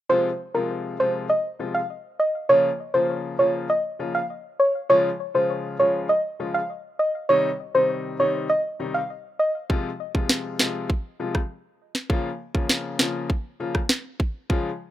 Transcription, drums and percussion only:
9.70 kick
10.15 kick
10.29 snare
10.59 snare
10.90 kick
11.35 kick, cross-stick
11.95 snare
12.10 kick
12.55 kick
12.69 snare
12.99 snare
13.30 kick
13.75 kick, cross-stick
13.89 snare
14.20 kick
14.50 kick

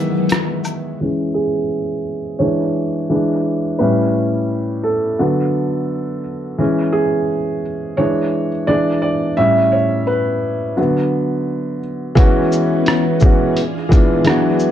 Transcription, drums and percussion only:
0.29 cross-stick, closed hi-hat, shaker
0.64 high woodblock, shaker
12.17 kick, closed hi-hat
12.52 shaker
12.86 cross-stick, closed hi-hat
13.20 kick, shaker
13.57 closed hi-hat
13.92 kick, closed hi-hat, shaker
14.25 cross-stick, closed hi-hat
14.59 shaker

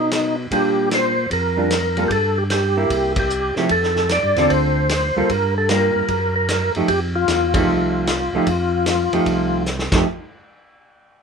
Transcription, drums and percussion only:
0.11 snare, hi-hat pedal, ride
0.51 kick, ride
0.91 snare, hi-hat pedal, ride
1.31 kick, ride
1.71 snare, hi-hat pedal, ride
1.97 ride
2.10 kick, ride
2.50 snare, hi-hat pedal, ride
2.90 kick, ride
3.16 kick, ride
3.30 hi-hat pedal
3.56 snare
3.69 kick, ride
3.83 snare
3.96 snare
4.09 snare, hi-hat pedal, ride
4.36 snare, ride
4.50 kick, ride
4.89 snare, hi-hat pedal, ride
5.29 kick, ride
5.69 snare, hi-hat pedal, ride
6.08 kick, ride
6.49 snare, hi-hat pedal, ride
6.75 ride
6.88 kick, ride
7.28 snare, hi-hat pedal, ride
7.54 kick, ride
8.07 snare, hi-hat pedal, ride
8.47 kick, ride
8.86 snare, hi-hat pedal, ride
9.13 ride
9.26 kick, ride
9.66 snare, hi-hat pedal
9.79 snare
9.92 kick, snare, crash

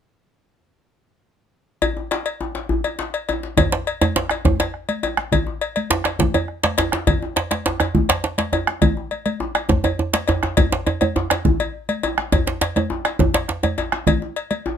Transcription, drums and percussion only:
1.82 cowbell, djembe bass
1.97 djembe tone
2.11 cowbell, djembe slap
2.26 cowbell
2.41 djembe tone
2.55 djembe slap
2.69 djembe bass
2.84 cowbell, djembe tone
2.99 djembe slap
3.14 cowbell
3.29 cowbell, djembe tone
3.43 djembe slap
3.57 bombo low, cowbell, high conga, djembe tone, low conga, djembe bass
3.72 djembe slap, djembe tone
3.87 cowbell
4.01 cowbell, djembe tone, high conga
4.16 djembe slap, djembe tone
4.29 bombo rim, cowbell, djembe slap
4.45 bombo low, high conga, djembe tone, djembe bass, low conga
4.60 cowbell, djembe slap, djembe tone
4.74 bombo rim
4.89 cowbell, high conga
5.03 cowbell, djembe tone
5.17 bombo rim, djembe slap, high conga
5.32 bombo low, cowbell, high conga, djembe bass, low conga
5.47 djembe tone
5.61 cowbell
5.76 cowbell, high conga
5.90 djembe slap, djembe tone
6.04 bombo rim, cowbell, djembe slap
6.19 bombo low, djembe slap, high conga, djembe bass, low conga
6.34 cowbell, djembe tone, high conga
6.48 bombo rim
6.63 cowbell, djembe slap, high conga
6.78 cowbell, djembe slap, djembe tone
6.92 bombo rim, djembe slap, high conga
7.07 bombo low, cowbell, djembe tone, high conga, djembe bass, low conga
7.22 djembe tone
7.36 cowbell, djembe slap
7.51 cowbell, djembe slap, high conga
7.66 djembe slap, djembe tone
7.80 bombo rim, cowbell, djembe slap, djembe tone
7.94 bombo low, high conga, low conga, djembe bass
8.09 cowbell, djembe slap, high conga
8.24 djembe slap
8.38 cowbell, djembe slap, high conga
8.53 cowbell, djembe tone
8.67 bombo rim, djembe slap, high conga
8.81 bombo low, cowbell, high conga, djembe bass, low conga
8.97 djembe tone
9.11 cowbell, high conga
9.26 cowbell, high conga
9.40 bombo rim, djembe slap, djembe tone, high conga
9.55 bombo rim, cowbell, djembe slap, high conga
9.69 bombo low, djembe slap, djembe tone, high conga, djembe bass, low conga
9.84 cowbell, djembe tone, high conga
9.99 djembe tone
10.13 bombo rim, cowbell, djembe slap, high conga
10.28 cowbell, djembe tone
10.43 bombo rim, djembe slap, djembe tone
10.57 bombo low, cowbell, high conga, djembe tone, low conga, djembe bass
10.72 djembe slap, djembe tone
10.87 cowbell, djembe tone
11.01 cowbell, high conga, djembe tone
11.16 djembe tone
11.30 bombo rim, cowbell, djembe slap
11.45 bombo low, high conga, low conga, djembe bass
11.59 cowbell, high conga, djembe tone
11.89 cowbell, high conga
12.03 cowbell, djembe tone
12.18 bombo rim, djembe slap, high conga
12.32 bombo low, cowbell, high conga, djembe tone, low conga, djembe bass
12.47 djembe slap, djembe tone
12.61 cowbell, djembe slap
12.76 cowbell, high conga, djembe tone
12.90 djembe tone
13.05 bombo rim, cowbell, djembe slap
13.19 bombo low, high conga, djembe tone, low conga, djembe bass
13.34 cowbell, djembe slap, high conga, djembe tone
13.48 bombo rim, djembe slap
13.63 cowbell, high conga, djembe tone
13.78 cowbell, djembe tone
13.92 bombo rim, djembe slap, high conga
14.07 bombo low, cowbell, high conga, low conga, djembe bass
14.22 djembe tone
14.36 cowbell
14.51 cowbell, high conga
14.66 djembe tone

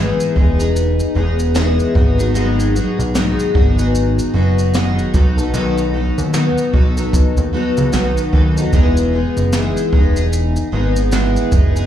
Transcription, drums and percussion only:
0.20 shaker
0.36 kick
0.60 shaker
0.76 shaker
1.00 shaker
1.39 shaker
1.55 snare, shaker
1.80 shaker
1.95 kick
2.20 shaker
2.35 shaker
2.60 shaker
2.76 shaker
3.00 shaker
3.15 snare, shaker
3.39 shaker
3.55 kick
3.79 shaker
3.95 shaker
4.19 shaker
4.59 shaker
4.74 snare, shaker
4.99 shaker
5.14 kick, shaker
5.38 shaker
5.54 shaker
5.78 shaker
6.18 shaker
6.34 snare, shaker
6.58 shaker
6.74 kick
6.97 shaker
7.13 kick, shaker
7.37 shaker
7.77 shaker
7.93 snare, shaker
8.17 shaker
8.33 kick
8.57 shaker
8.73 kick, shaker
8.97 shaker
9.37 shaker
9.53 snare, shaker
9.77 shaker
9.93 kick
10.16 shaker
10.33 shaker
10.56 shaker
10.96 shaker
11.12 snare, shaker
11.37 shaker
11.52 kick, shaker
11.76 shaker

